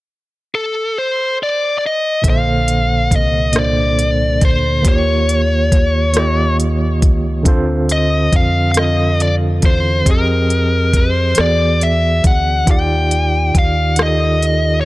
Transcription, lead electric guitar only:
0.55 0.97 A4 medium
0.98 1.37 C5 medium
1.43 1.77 D5 medium
1.78 1.83 D5 medium
1.86 2.28 D#5 medium
2.30 3.15 F5 medium
3.16 3.58 D#5 medium
3.59 4.45 D5 medium
4.45 4.88 C5 medium
4.88 6.56 C#5 medium
7.92 8.35 D#5 medium
8.36 8.70 F5 medium
8.72 8.77 F5 medium
8.79 9.22 D#5 medium
9.22 9.33 D5 medium
9.66 10.09 C5 medium
10.11 10.98 A#4 medium
10.97 11.40 C5 medium
11.41 11.83 D5 medium
11.83 12.22 E5 medium
12.27 12.70 F#5 medium
12.71 13.58 G5 medium
13.59 14.01 F5 medium
14.03 14.81 D#5 medium
14.81 14.85 C#5 medium

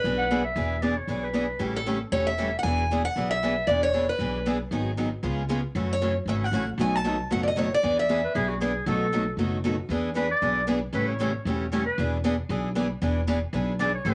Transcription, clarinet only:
0.18 0.43 F#5 loud
0.45 0.84 E5 medium
0.82 0.99 D5 medium
0.98 1.25 C#5 medium
1.24 1.68 B4 medium
8.24 8.34 B4 medium
8.36 8.50 G#4 medium
8.49 8.60 F#4 medium
8.61 8.85 G#4 medium
8.87 9.35 A4 medium
10.16 10.30 B4 medium
10.31 10.66 D5 medium
10.95 11.08 B4 medium
11.08 11.43 C#5 medium
11.72 11.85 C#5 medium
11.86 12.10 B4 medium
13.80 13.94 D5 medium
13.95 14.14 C#5 medium

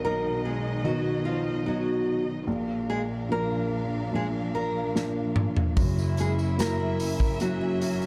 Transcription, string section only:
0.00 2.45 B2 medium
0.00 2.45 D#3 medium
0.00 2.45 D#4 medium
0.00 2.45 D#5 medium
2.48 5.74 A#2 medium
2.48 5.74 F3 medium
2.48 5.74 D4 medium
2.48 5.74 A#4 medium
2.48 5.74 F5 medium
5.77 8.06 F#2 medium
5.77 8.06 F#3 medium
5.77 8.06 A#3 medium
5.77 8.06 G#4 medium
5.77 8.06 E5 medium

